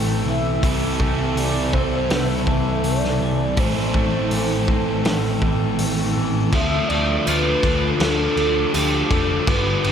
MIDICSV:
0, 0, Header, 1, 8, 480
1, 0, Start_track
1, 0, Tempo, 737101
1, 412, Time_signature, 4, 2, 24, 8
1, 6459, End_track
2, 0, Start_track
2, 0, Title_t, "Ambient pad"
2, 0, Program_c, 0, 92
2, 0, Note_on_c, 0, 69, 78
2, 0, Note_on_c, 0, 79, 69
2, 0, Note_on_c, 0, 81, 84
2, 388, Note_off_c, 0, 69, 0
2, 388, Note_off_c, 0, 81, 0
2, 394, Note_off_c, 0, 79, 0
2, 411, Note_on_c, 0, 69, 83
2, 411, Note_on_c, 0, 81, 91
2, 413, Note_on_c, 0, 76, 77
2, 2314, Note_off_c, 0, 69, 0
2, 2315, Note_off_c, 0, 76, 0
2, 2333, Note_on_c, 0, 79, 76
2, 2337, Note_on_c, 0, 69, 76
2, 4228, Note_off_c, 0, 81, 0
2, 4235, Note_off_c, 0, 79, 0
2, 4237, Note_off_c, 0, 69, 0
2, 4248, Note_on_c, 0, 65, 76
2, 4249, Note_on_c, 0, 86, 94
2, 4250, Note_on_c, 0, 69, 83
2, 6151, Note_off_c, 0, 65, 0
2, 6151, Note_off_c, 0, 69, 0
2, 6168, Note_on_c, 0, 71, 81
2, 6168, Note_on_c, 0, 79, 76
2, 6459, Note_off_c, 0, 71, 0
2, 6459, Note_off_c, 0, 79, 0
2, 6459, Note_off_c, 0, 86, 0
2, 6459, End_track
3, 0, Start_track
3, 0, Title_t, "Soft synth lead"
3, 0, Program_c, 1, 80
3, 167, Note_on_c, 1, 76, 118
3, 624, Note_off_c, 1, 76, 0
3, 886, Note_on_c, 1, 74, 104
3, 1128, Note_on_c, 1, 72, 96
3, 1138, Note_off_c, 1, 74, 0
3, 1361, Note_on_c, 1, 71, 100
3, 1371, Note_off_c, 1, 72, 0
3, 1607, Note_on_c, 1, 69, 91
3, 1617, Note_off_c, 1, 71, 0
3, 1847, Note_on_c, 1, 74, 102
3, 1857, Note_off_c, 1, 69, 0
3, 2338, Note_on_c, 1, 72, 103
3, 2348, Note_off_c, 1, 74, 0
3, 3777, Note_off_c, 1, 72, 0
3, 4252, Note_on_c, 1, 76, 118
3, 4484, Note_on_c, 1, 74, 101
3, 4494, Note_off_c, 1, 76, 0
3, 4729, Note_on_c, 1, 71, 108
3, 4738, Note_off_c, 1, 74, 0
3, 5212, Note_on_c, 1, 69, 106
3, 5222, Note_off_c, 1, 71, 0
3, 5680, Note_on_c, 1, 67, 89
3, 5689, Note_off_c, 1, 69, 0
3, 5927, Note_on_c, 1, 69, 98
3, 5937, Note_off_c, 1, 67, 0
3, 6172, Note_on_c, 1, 71, 114
3, 6182, Note_off_c, 1, 69, 0
3, 6459, Note_off_c, 1, 71, 0
3, 6459, End_track
4, 0, Start_track
4, 0, Title_t, "Clean electric guitar"
4, 0, Program_c, 2, 27
4, 0, Note_on_c, 2, 52, 67
4, 0, Note_on_c, 2, 57, 70
4, 0, Note_on_c, 2, 60, 65
4, 177, Note_off_c, 2, 52, 0
4, 180, Note_on_c, 2, 52, 66
4, 421, Note_off_c, 2, 52, 0
4, 424, Note_on_c, 2, 52, 69
4, 656, Note_off_c, 2, 57, 0
4, 659, Note_on_c, 2, 57, 65
4, 897, Note_off_c, 2, 52, 0
4, 905, Note_on_c, 2, 52, 67
4, 1134, Note_off_c, 2, 60, 0
4, 1137, Note_on_c, 2, 60, 70
4, 1373, Note_off_c, 2, 57, 0
4, 1375, Note_on_c, 2, 57, 71
4, 1606, Note_off_c, 2, 52, 0
4, 1614, Note_on_c, 2, 52, 70
4, 1854, Note_off_c, 2, 57, 0
4, 1857, Note_on_c, 2, 57, 70
4, 2085, Note_off_c, 2, 52, 0
4, 2093, Note_on_c, 2, 52, 67
4, 2325, Note_off_c, 2, 52, 0
4, 2333, Note_on_c, 2, 52, 79
4, 2336, Note_off_c, 2, 60, 0
4, 2572, Note_off_c, 2, 57, 0
4, 2575, Note_on_c, 2, 57, 66
4, 2805, Note_off_c, 2, 52, 0
4, 2813, Note_on_c, 2, 52, 70
4, 3057, Note_on_c, 2, 60, 63
4, 3291, Note_off_c, 2, 57, 0
4, 3299, Note_on_c, 2, 57, 66
4, 3535, Note_off_c, 2, 52, 0
4, 3543, Note_on_c, 2, 52, 66
4, 3775, Note_off_c, 2, 57, 0
4, 3783, Note_on_c, 2, 57, 65
4, 4007, Note_off_c, 2, 52, 0
4, 4015, Note_on_c, 2, 52, 64
4, 4250, Note_off_c, 2, 52, 0
4, 4252, Note_on_c, 2, 53, 78
4, 4256, Note_off_c, 2, 60, 0
4, 4259, Note_off_c, 2, 57, 0
4, 4498, Note_on_c, 2, 57, 72
4, 4738, Note_on_c, 2, 65, 82
4, 4983, Note_on_c, 2, 62, 72
4, 5212, Note_off_c, 2, 53, 0
4, 5219, Note_on_c, 2, 53, 73
4, 5453, Note_off_c, 2, 57, 0
4, 5461, Note_on_c, 2, 57, 67
4, 5683, Note_off_c, 2, 53, 0
4, 5691, Note_on_c, 2, 53, 65
4, 5926, Note_off_c, 2, 57, 0
4, 5933, Note_on_c, 2, 57, 67
4, 5935, Note_off_c, 2, 65, 0
4, 6166, Note_off_c, 2, 57, 0
4, 6168, Note_on_c, 2, 59, 80
4, 6172, Note_off_c, 2, 53, 0
4, 6177, Note_off_c, 2, 62, 0
4, 6402, Note_off_c, 2, 59, 0
4, 6410, Note_on_c, 2, 59, 69
4, 6459, Note_off_c, 2, 59, 0
4, 6459, End_track
5, 0, Start_track
5, 0, Title_t, "Distorted electric guitar"
5, 0, Program_c, 3, 30
5, 4489, Note_on_c, 3, 62, 61
5, 4508, Note_on_c, 3, 57, 57
5, 4736, Note_off_c, 3, 57, 0
5, 4749, Note_off_c, 3, 62, 0
5, 4976, Note_on_c, 3, 62, 74
5, 4996, Note_on_c, 3, 57, 63
5, 5219, Note_off_c, 3, 57, 0
5, 5227, Note_off_c, 3, 62, 0
5, 5933, Note_on_c, 3, 62, 78
5, 5954, Note_on_c, 3, 57, 59
5, 6159, Note_off_c, 3, 62, 0
5, 6169, Note_off_c, 3, 57, 0
5, 6407, Note_on_c, 3, 55, 71
5, 6426, Note_on_c, 3, 50, 55
5, 6459, Note_off_c, 3, 50, 0
5, 6459, Note_off_c, 3, 55, 0
5, 6459, End_track
6, 0, Start_track
6, 0, Title_t, "Overdriven electric guitar"
6, 0, Program_c, 4, 29
6, 0, Note_on_c, 4, 45, 86
6, 0, Note_on_c, 4, 52, 82
6, 0, Note_on_c, 4, 57, 89
6, 0, Note_on_c, 4, 60, 93
6, 0, Note_on_c, 4, 64, 98
6, 394, Note_off_c, 4, 45, 0
6, 408, Note_on_c, 4, 48, 90
6, 411, Note_off_c, 4, 52, 0
6, 414, Note_on_c, 4, 52, 88
6, 416, Note_off_c, 4, 57, 0
6, 419, Note_on_c, 4, 55, 89
6, 424, Note_off_c, 4, 60, 0
6, 425, Note_off_c, 4, 64, 0
6, 426, Note_on_c, 4, 60, 88
6, 427, Note_on_c, 4, 64, 94
6, 2318, Note_off_c, 4, 48, 0
6, 2320, Note_off_c, 4, 52, 0
6, 2322, Note_on_c, 4, 45, 81
6, 2323, Note_off_c, 4, 55, 0
6, 2327, Note_off_c, 4, 60, 0
6, 2327, Note_off_c, 4, 64, 0
6, 2328, Note_on_c, 4, 52, 86
6, 2331, Note_on_c, 4, 57, 77
6, 2337, Note_on_c, 4, 60, 88
6, 2341, Note_on_c, 4, 64, 88
6, 4234, Note_off_c, 4, 45, 0
6, 4237, Note_off_c, 4, 52, 0
6, 4238, Note_off_c, 4, 57, 0
6, 4242, Note_off_c, 4, 60, 0
6, 4244, Note_off_c, 4, 64, 0
6, 4252, Note_on_c, 4, 50, 96
6, 4256, Note_on_c, 4, 53, 91
6, 4264, Note_on_c, 4, 57, 100
6, 4270, Note_on_c, 4, 62, 99
6, 4721, Note_off_c, 4, 50, 0
6, 4727, Note_off_c, 4, 53, 0
6, 4729, Note_on_c, 4, 50, 84
6, 4734, Note_off_c, 4, 57, 0
6, 4734, Note_on_c, 4, 53, 78
6, 4741, Note_on_c, 4, 57, 85
6, 4747, Note_off_c, 4, 62, 0
6, 4749, Note_on_c, 4, 62, 92
6, 5199, Note_off_c, 4, 50, 0
6, 5207, Note_on_c, 4, 50, 98
6, 5209, Note_off_c, 4, 53, 0
6, 5213, Note_off_c, 4, 57, 0
6, 5217, Note_off_c, 4, 62, 0
6, 5217, Note_on_c, 4, 53, 100
6, 5221, Note_on_c, 4, 57, 99
6, 5225, Note_on_c, 4, 62, 98
6, 5451, Note_off_c, 4, 62, 0
6, 5458, Note_on_c, 4, 62, 75
6, 5461, Note_off_c, 4, 57, 0
6, 5469, Note_off_c, 4, 53, 0
6, 5469, Note_on_c, 4, 57, 71
6, 5477, Note_on_c, 4, 53, 59
6, 5686, Note_off_c, 4, 50, 0
6, 5694, Note_on_c, 4, 50, 71
6, 5696, Note_off_c, 4, 53, 0
6, 5698, Note_off_c, 4, 57, 0
6, 5704, Note_on_c, 4, 53, 66
6, 5706, Note_off_c, 4, 62, 0
6, 5706, Note_on_c, 4, 57, 78
6, 5713, Note_on_c, 4, 62, 73
6, 6159, Note_off_c, 4, 50, 0
6, 6164, Note_off_c, 4, 53, 0
6, 6165, Note_off_c, 4, 57, 0
6, 6169, Note_off_c, 4, 62, 0
6, 6174, Note_on_c, 4, 43, 92
6, 6181, Note_on_c, 4, 50, 90
6, 6186, Note_on_c, 4, 55, 96
6, 6189, Note_on_c, 4, 59, 95
6, 6192, Note_on_c, 4, 62, 103
6, 6459, Note_off_c, 4, 43, 0
6, 6459, Note_off_c, 4, 50, 0
6, 6459, Note_off_c, 4, 55, 0
6, 6459, Note_off_c, 4, 59, 0
6, 6459, Note_off_c, 4, 62, 0
6, 6459, End_track
7, 0, Start_track
7, 0, Title_t, "Picked electric bass"
7, 0, Program_c, 5, 34
7, 0, Note_on_c, 5, 33, 91
7, 159, Note_off_c, 5, 33, 0
7, 170, Note_on_c, 5, 35, 81
7, 409, Note_off_c, 5, 35, 0
7, 409, Note_on_c, 5, 36, 81
7, 641, Note_off_c, 5, 36, 0
7, 648, Note_on_c, 5, 36, 75
7, 881, Note_off_c, 5, 36, 0
7, 884, Note_on_c, 5, 36, 80
7, 1349, Note_off_c, 5, 36, 0
7, 1367, Note_on_c, 5, 36, 93
7, 1601, Note_off_c, 5, 36, 0
7, 1607, Note_on_c, 5, 36, 85
7, 1840, Note_off_c, 5, 36, 0
7, 1844, Note_on_c, 5, 36, 89
7, 2079, Note_off_c, 5, 36, 0
7, 2090, Note_on_c, 5, 36, 82
7, 2322, Note_off_c, 5, 36, 0
7, 2326, Note_on_c, 5, 33, 87
7, 2560, Note_off_c, 5, 33, 0
7, 2565, Note_on_c, 5, 33, 78
7, 2800, Note_off_c, 5, 33, 0
7, 2811, Note_on_c, 5, 33, 74
7, 3273, Note_off_c, 5, 33, 0
7, 3286, Note_on_c, 5, 33, 89
7, 3521, Note_off_c, 5, 33, 0
7, 3527, Note_on_c, 5, 33, 86
7, 3761, Note_off_c, 5, 33, 0
7, 3772, Note_on_c, 5, 33, 87
7, 4003, Note_off_c, 5, 33, 0
7, 4013, Note_on_c, 5, 33, 76
7, 4244, Note_off_c, 5, 33, 0
7, 4247, Note_on_c, 5, 38, 90
7, 4422, Note_off_c, 5, 38, 0
7, 4493, Note_on_c, 5, 38, 85
7, 4666, Note_off_c, 5, 38, 0
7, 4733, Note_on_c, 5, 38, 78
7, 4906, Note_off_c, 5, 38, 0
7, 4969, Note_on_c, 5, 38, 102
7, 5144, Note_off_c, 5, 38, 0
7, 5207, Note_on_c, 5, 38, 90
7, 5382, Note_off_c, 5, 38, 0
7, 5447, Note_on_c, 5, 38, 90
7, 5622, Note_off_c, 5, 38, 0
7, 5693, Note_on_c, 5, 38, 93
7, 5865, Note_off_c, 5, 38, 0
7, 5931, Note_on_c, 5, 29, 93
7, 6104, Note_off_c, 5, 29, 0
7, 6169, Note_on_c, 5, 31, 93
7, 6343, Note_off_c, 5, 31, 0
7, 6412, Note_on_c, 5, 31, 82
7, 6459, Note_off_c, 5, 31, 0
7, 6459, End_track
8, 0, Start_track
8, 0, Title_t, "Drums"
8, 411, Note_on_c, 9, 36, 104
8, 412, Note_on_c, 9, 46, 56
8, 476, Note_off_c, 9, 36, 0
8, 477, Note_off_c, 9, 46, 0
8, 650, Note_on_c, 9, 36, 86
8, 715, Note_off_c, 9, 36, 0
8, 892, Note_on_c, 9, 46, 54
8, 957, Note_off_c, 9, 46, 0
8, 1129, Note_on_c, 9, 36, 80
8, 1194, Note_off_c, 9, 36, 0
8, 1369, Note_on_c, 9, 46, 53
8, 1374, Note_on_c, 9, 38, 112
8, 1434, Note_off_c, 9, 46, 0
8, 1440, Note_off_c, 9, 38, 0
8, 1608, Note_on_c, 9, 36, 85
8, 1673, Note_off_c, 9, 36, 0
8, 1847, Note_on_c, 9, 46, 52
8, 1912, Note_off_c, 9, 46, 0
8, 1977, Note_on_c, 9, 38, 30
8, 2042, Note_off_c, 9, 38, 0
8, 2324, Note_on_c, 9, 46, 51
8, 2328, Note_on_c, 9, 36, 107
8, 2389, Note_off_c, 9, 46, 0
8, 2393, Note_off_c, 9, 36, 0
8, 2567, Note_on_c, 9, 36, 86
8, 2632, Note_off_c, 9, 36, 0
8, 2806, Note_on_c, 9, 46, 52
8, 2871, Note_off_c, 9, 46, 0
8, 3048, Note_on_c, 9, 36, 86
8, 3113, Note_off_c, 9, 36, 0
8, 3288, Note_on_c, 9, 46, 54
8, 3293, Note_on_c, 9, 38, 103
8, 3353, Note_off_c, 9, 46, 0
8, 3358, Note_off_c, 9, 38, 0
8, 3528, Note_on_c, 9, 36, 83
8, 3593, Note_off_c, 9, 36, 0
8, 3768, Note_on_c, 9, 46, 59
8, 3833, Note_off_c, 9, 46, 0
8, 4249, Note_on_c, 9, 49, 81
8, 4250, Note_on_c, 9, 36, 103
8, 4314, Note_off_c, 9, 49, 0
8, 4315, Note_off_c, 9, 36, 0
8, 4492, Note_on_c, 9, 49, 67
8, 4557, Note_off_c, 9, 49, 0
8, 4733, Note_on_c, 9, 54, 94
8, 4735, Note_on_c, 9, 49, 73
8, 4799, Note_off_c, 9, 54, 0
8, 4801, Note_off_c, 9, 49, 0
8, 4970, Note_on_c, 9, 36, 90
8, 4970, Note_on_c, 9, 49, 61
8, 5035, Note_off_c, 9, 36, 0
8, 5035, Note_off_c, 9, 49, 0
8, 5210, Note_on_c, 9, 49, 80
8, 5216, Note_on_c, 9, 38, 120
8, 5275, Note_off_c, 9, 49, 0
8, 5281, Note_off_c, 9, 38, 0
8, 5452, Note_on_c, 9, 49, 59
8, 5517, Note_off_c, 9, 49, 0
8, 5692, Note_on_c, 9, 54, 94
8, 5694, Note_on_c, 9, 49, 82
8, 5757, Note_off_c, 9, 54, 0
8, 5759, Note_off_c, 9, 49, 0
8, 5930, Note_on_c, 9, 36, 92
8, 5930, Note_on_c, 9, 49, 61
8, 5995, Note_off_c, 9, 36, 0
8, 5995, Note_off_c, 9, 49, 0
8, 6170, Note_on_c, 9, 36, 109
8, 6171, Note_on_c, 9, 49, 82
8, 6235, Note_off_c, 9, 36, 0
8, 6236, Note_off_c, 9, 49, 0
8, 6410, Note_on_c, 9, 49, 65
8, 6459, Note_off_c, 9, 49, 0
8, 6459, End_track
0, 0, End_of_file